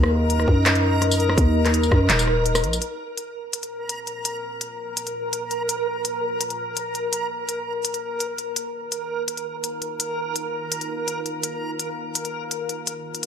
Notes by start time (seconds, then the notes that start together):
Already playing: D#2 D#4 A#4 D#5
0.03 cross-stick
0.30 closed hi-hat
0.40 cross-stick
0.48 F#2, kick
0.66 cross-stick, clap, closed hi-hat
0.75 closed hi-hat
1.02 cross-stick, closed hi-hat
1.11 tambourine
1.20 closed hi-hat
1.29 cross-stick
1.38 D#2, kick, closed hi-hat
1.65 cross-stick, clap, closed hi-hat
1.74 closed hi-hat
1.83 tambourine
1.91 F#2, kick, cross-stick
2.09 D#1, clap, closed hi-hat
2.19 closed hi-hat, tambourine
2.28 cross-stick
2.46 closed hi-hat
2.55 cross-stick, tambourine
2.63 A#1, closed hi-hat
2.73 tambourine
2.81 A#3 F4 A#4 C5, closed hi-hat
3.17 closed hi-hat
3.53 closed hi-hat
3.63 closed hi-hat
3.89 closed hi-hat
4.07 closed hi-hat
4.25 closed hi-hat
4.61 closed hi-hat
4.97 closed hi-hat
5.07 closed hi-hat
5.33 closed hi-hat
5.51 closed hi-hat
5.69 A#4, closed hi-hat
6.05 closed hi-hat
6.41 closed hi-hat
6.50 closed hi-hat
6.77 closed hi-hat
6.95 closed hi-hat
7.13 closed hi-hat
7.49 closed hi-hat
7.85 closed hi-hat
7.94 closed hi-hat
8.20 closed hi-hat
8.38 closed hi-hat
8.56 D#4 F5, closed hi-hat
8.92 closed hi-hat
9.28 closed hi-hat
9.37 closed hi-hat
9.64 closed hi-hat
9.82 closed hi-hat
10.00 closed hi-hat
10.36 closed hi-hat
10.72 closed hi-hat
10.81 closed hi-hat
11.08 closed hi-hat
11.26 closed hi-hat
11.43 closed hi-hat
11.79 closed hi-hat
12.15 closed hi-hat
12.25 closed hi-hat
12.51 closed hi-hat
12.69 closed hi-hat
12.87 closed hi-hat
13.15 closed hi-hat